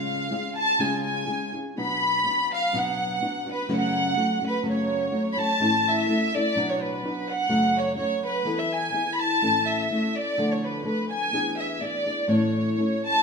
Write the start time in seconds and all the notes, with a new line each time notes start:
Already playing: C#3 G#3 C#4 F4 G#4 F5
0.31 G#3 C#4 F4 G#4
0.57 A5
0.79 C#3 G#3 C#4 F4 G#4 G#5
1.05 G#5
1.27 G#3 C#4 F4 G#4
1.53 C#4 F4 G#4
1.77 B2 F#3 B3 D4 F#4 B5
2.25 F#3 B3 D4 F#4
2.54 F5
2.73 B2 F#3 B3 D4 F#4 F#5
3.21 F#3 B3 D4 F#4
3.46 B3 D4 F#4
3.52 B4
3.69 F#2 C#3 F#3 A3 C#4 F#4
3.76 F#5
4.15 F#3 A3 C#4 F#4
4.41 F#3 A3 C#4 F#4
4.47 B4
4.62 F#2 C#3 F#3 A3 C#4 F#4
4.70 C#5
5.11 F#3 A3 C#4 F#4
5.32 B5
5.37 F#3 A3 C#4 F#4 A5
5.60 A2 E3 A3 C#4 E4 A4
5.88 E5
6.08 A3 C#4 E4 A4
6.34 A3 C#4 E4 A4 D5
6.56 B2 F#3 B3 D4 F#4
6.69 C#5
6.81 B4
7.04 F#3 B3 D4 F#4
7.30 F#5
7.49 F#2 C#3 F#3 A3 C#4 F#4
7.77 C#5
7.97 F#3 A3 C#4 F#4 C#5
8.25 B4
8.45 E3 B3 E4 A4
8.58 E5
8.72 G#5
8.93 E3 B3 E4 G#4
9.13 B5
9.19 A5
9.42 A2 E3 A3 C#4 E4 A4
9.67 E5
9.91 A3 C#4 E4 A4
10.16 D5
10.38 D3 F3 A3 D4 A4
10.51 C#5
10.65 B4
10.84 F3 A3 D4 A4 B4
11.12 G#5
11.33 E3 B3 D4 G#4
11.60 E5
11.81 E3 B3 D4 G#4 D5
12.06 B3 D4 G#4
12.28 A2 E3 A3 C#4 E4 A4 C#5
12.78 A3 C#4 E4 A4
13.04 A5